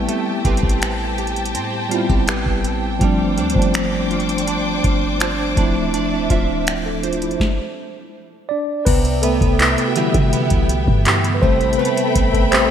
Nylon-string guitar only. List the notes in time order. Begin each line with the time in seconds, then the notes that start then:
Already playing: C4 G4 B4 E5
0.08 A3
0.45 C4 G4 B4
1.18 G4
1.55 C4
1.91 F4
2.09 G4
2.28 C4 G4 B4
3.01 G3
3.38 D4 F4 C5
4.11 F4
4.47 D4
4.84 F4
5.21 D4 F4 C5
5.57 D4
5.94 D4
6.30 F4 C5 E5
7.03 C5
8.86 C3
9.23 B3
9.60 E4
9.96 B3 E4 G4
10.33 B3
11.06 B3 E4 G4
11.43 A3
11.79 A3
12.16 C4
12.52 G4